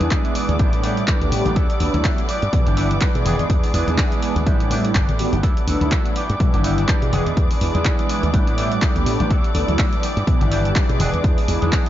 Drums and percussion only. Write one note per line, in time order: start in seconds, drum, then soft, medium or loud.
0.01 closed hi-hat soft
0.01 high conga medium
0.01 shaker soft
0.11 kick loud
0.11 clap loud
0.11 closed hi-hat medium
0.11 high conga medium
0.11 shaker medium
0.25 closed hi-hat soft
0.25 shaker soft
0.35 open hi-hat loud
0.35 shaker loud
0.49 closed hi-hat soft
0.49 shaker soft
0.59 kick loud
0.59 closed hi-hat medium
0.73 closed hi-hat soft
0.73 shaker soft
0.83 open hi-hat loud
0.83 shaker medium
0.97 closed hi-hat soft
0.97 shaker soft
1.08 kick loud
1.08 clap loud
1.08 closed hi-hat medium
1.21 closed hi-hat soft
1.21 shaker soft
1.32 open hi-hat loud
1.32 shaker medium
1.45 closed hi-hat soft
1.45 high conga medium
1.45 shaker soft
1.56 kick loud
1.56 closed hi-hat medium
1.56 shaker medium
1.70 closed hi-hat soft
1.70 shaker soft
1.80 open hi-hat loud
1.80 shaker medium
1.93 closed hi-hat soft
1.93 high conga medium
1.93 shaker soft
2.04 kick loud
2.04 clap loud
2.04 closed hi-hat medium
2.04 high conga medium
2.04 shaker medium
2.18 closed hi-hat soft
2.18 shaker soft
2.28 open hi-hat loud
2.28 shaker loud
2.42 closed hi-hat soft
2.42 shaker soft
2.53 kick loud
2.53 closed hi-hat medium
2.66 closed hi-hat soft
2.66 low conga medium
2.66 shaker soft
2.77 open hi-hat medium
2.77 shaker medium
2.90 closed hi-hat soft
2.90 shaker soft
3.01 kick loud
3.01 clap loud
3.01 closed hi-hat medium
3.15 closed hi-hat soft
3.15 shaker soft
3.25 open hi-hat loud
3.25 low conga medium
3.25 shaker loud
3.39 closed hi-hat soft
3.39 shaker soft
3.50 kick loud
3.50 closed hi-hat medium
3.50 shaker medium
3.63 open hi-hat medium
3.63 shaker soft
3.74 open hi-hat loud
3.74 shaker medium
3.87 closed hi-hat soft
3.87 high conga medium
3.87 shaker soft
3.97 kick loud
3.97 clap loud
3.97 closed hi-hat medium
3.97 high conga medium
3.97 shaker medium
4.11 closed hi-hat soft
4.11 shaker soft
4.22 open hi-hat loud
4.22 shaker medium
4.36 closed hi-hat soft
4.36 shaker soft
4.46 kick loud
4.46 closed hi-hat medium
4.60 closed hi-hat soft
4.60 shaker soft
4.70 open hi-hat loud
4.70 high conga medium
4.70 shaker loud
4.85 closed hi-hat soft
4.85 shaker soft
4.95 kick loud
4.95 clap loud
4.95 closed hi-hat medium
5.09 closed hi-hat soft
5.09 low conga medium
5.09 shaker soft
5.19 open hi-hat loud
5.19 shaker loud
5.33 closed hi-hat soft
5.33 high conga medium
5.33 shaker soft
5.43 kick loud
5.43 closed hi-hat medium
5.43 shaker soft
5.57 closed hi-hat soft
5.57 shaker soft
5.67 open hi-hat loud
5.67 shaker medium
5.81 closed hi-hat soft
5.81 high conga medium
5.81 shaker soft
5.92 kick loud
5.92 clap loud
5.92 closed hi-hat medium
5.92 high conga medium
5.92 shaker medium
6.05 closed hi-hat soft
6.05 shaker soft
6.16 open hi-hat loud
6.16 shaker loud
6.30 closed hi-hat soft
6.30 shaker soft
6.40 kick loud
6.40 closed hi-hat medium
6.53 closed hi-hat soft
6.53 low conga loud
6.53 shaker soft
6.63 open hi-hat loud
6.63 shaker medium
6.78 closed hi-hat soft
6.78 shaker soft
6.88 kick loud
6.88 clap loud
6.88 closed hi-hat medium
6.88 shaker medium
7.02 closed hi-hat soft
7.13 open hi-hat loud
7.13 low conga medium
7.13 shaker loud
7.26 closed hi-hat soft
7.26 shaker soft
7.37 kick loud
7.37 closed hi-hat medium
7.37 shaker soft
7.51 open hi-hat medium
7.51 shaker soft
7.61 open hi-hat loud
7.61 shaker medium
7.74 closed hi-hat soft
7.74 high conga medium
7.74 shaker soft
7.85 kick loud
7.85 clap loud
7.85 closed hi-hat medium
7.85 high conga loud
7.85 shaker medium
7.99 closed hi-hat soft
7.99 shaker soft
8.09 open hi-hat loud
8.09 shaker medium
8.23 closed hi-hat soft
8.23 shaker soft
8.34 kick loud
8.34 closed hi-hat medium
8.47 closed hi-hat soft
8.47 shaker soft
8.58 open hi-hat loud
8.58 shaker loud
8.72 closed hi-hat soft
8.72 shaker soft
8.82 kick loud
8.82 clap loud
8.82 closed hi-hat medium
8.96 closed hi-hat soft
8.96 shaker soft
9.06 open hi-hat loud
9.06 shaker loud
9.20 closed hi-hat soft
9.20 high conga medium
9.20 shaker soft
9.30 kick loud
9.30 closed hi-hat medium
9.30 shaker soft
9.44 closed hi-hat soft
9.44 shaker soft
9.55 open hi-hat loud
9.55 shaker medium
9.68 closed hi-hat soft
9.68 high conga medium
9.68 shaker soft
9.79 kick loud
9.79 clap loud
9.79 closed hi-hat medium
9.79 high conga medium
9.79 shaker medium
9.93 closed hi-hat soft
9.93 shaker soft
10.03 open hi-hat loud
10.03 shaker medium
10.17 closed hi-hat soft
10.17 shaker soft
10.27 kick loud
10.27 closed hi-hat medium
10.40 closed hi-hat soft
10.40 low conga medium
10.40 shaker soft
10.52 open hi-hat loud
10.52 shaker medium
10.65 closed hi-hat soft
10.65 shaker soft
10.76 kick loud
10.76 clap loud
10.76 closed hi-hat medium
10.89 closed hi-hat soft
10.99 open hi-hat loud
10.99 low conga medium
10.99 shaker medium
11.13 closed hi-hat soft
11.13 shaker soft
11.24 kick loud
11.24 closed hi-hat medium
11.24 shaker medium
11.38 open hi-hat medium
11.38 shaker soft
11.48 open hi-hat loud
11.48 shaker medium
11.62 closed hi-hat soft
11.62 high conga medium
11.62 shaker soft
11.72 kick loud
11.72 clap loud
11.72 closed hi-hat medium
11.72 high conga medium
11.72 shaker medium
11.86 shaker soft